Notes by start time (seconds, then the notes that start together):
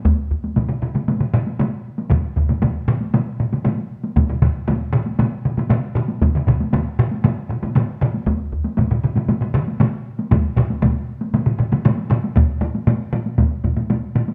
0.05 taiko, taiko high
0.31 taiko
0.44 taiko high
0.56 taiko, taiko low-mid, taiko mid, taiko high
0.69 taiko low-mid, taiko mid
0.82 taiko low-mid, taiko mid
0.95 taiko low-mid, taiko mid, taiko high
1.08 taiko low-mid, taiko mid, taiko high
1.20 taiko low-mid, taiko mid
1.34 taiko low-mid, taiko mid
1.47 taiko high
1.59 taiko low-mid, taiko mid, taiko high
1.98 taiko high
2.10 taiko, taiko low-mid, taiko mid, taiko high
2.36 taiko, taiko low-mid, taiko mid
2.49 taiko low-mid, taiko mid, taiko high
2.62 taiko, taiko low-mid, taiko mid, taiko high
2.88 taiko low-mid, taiko mid
3.01 taiko high
3.14 taiko low-mid, taiko mid, taiko high
3.40 taiko low-mid, taiko mid
3.53 taiko low-mid, taiko mid, taiko high
3.65 taiko low-mid, taiko mid, taiko high
3.78 taiko high
4.04 taiko high
4.16 taiko, taiko low-mid, taiko mid, taiko high
4.29 taiko low-mid, taiko mid
4.42 taiko, taiko low-mid, taiko mid
4.68 taiko, taiko low-mid, taiko mid, taiko high
4.93 taiko low-mid, taiko mid
5.06 taiko high
5.19 taiko low-mid, taiko mid, taiko high
5.45 taiko low-mid, taiko mid
5.57 taiko low-mid, taiko mid, taiko high
5.70 taiko low-mid, taiko mid, taiko high
5.95 taiko low-mid, taiko mid
6.08 taiko high
6.22 taiko, taiko low-mid, taiko mid, taiko high
6.35 taiko low-mid, taiko mid
6.48 taiko, taiko low-mid, taiko mid
6.60 taiko high
6.73 taiko, taiko low-mid, taiko mid, taiko high
6.99 taiko low-mid, taiko mid
7.11 taiko high
7.24 taiko low-mid, taiko mid, taiko high
7.50 taiko low-mid, taiko mid
7.63 taiko low-mid, taiko mid, taiko high
7.75 taiko low-mid, taiko mid, taiko high
8.01 taiko low-mid, taiko mid
8.14 taiko high
8.27 taiko, taiko high
8.53 taiko
8.64 taiko high
8.77 taiko, taiko low-mid, taiko mid, taiko high
8.91 taiko low-mid, taiko mid
9.03 taiko low-mid, taiko mid
9.16 taiko low-mid, taiko mid, taiko high
9.28 taiko low-mid, taiko mid, taiko high
9.41 taiko low-mid, taiko mid
9.54 taiko low-mid, taiko mid
9.68 taiko high
9.80 taiko low-mid, taiko mid, taiko high
10.19 taiko high
10.31 taiko, taiko low-mid, taiko mid, taiko high
10.57 taiko, taiko low-mid, taiko mid
10.70 taiko high
10.82 taiko, taiko low-mid, taiko mid, taiko high
11.21 taiko high
11.34 taiko low-mid, taiko mid, taiko high
11.46 taiko low-mid, taiko mid
11.58 taiko low-mid, taiko mid
11.72 taiko low-mid, taiko mid, taiko high
11.85 taiko low-mid, taiko mid, taiko high
11.98 taiko high
12.10 taiko low-mid, taiko mid
12.24 taiko high
12.36 taiko, taiko low-mid, taiko high
12.61 taiko low-mid, taiko high
12.75 taiko high
12.87 taiko low-mid, taiko high
13.13 taiko low-mid, taiko high
13.26 taiko high
13.38 taiko, taiko low-mid, taiko high
13.64 taiko, taiko low-mid, taiko high
13.77 taiko low-mid, taiko high
13.90 taiko low-mid, taiko high
14.15 taiko low-mid, taiko high
14.28 taiko high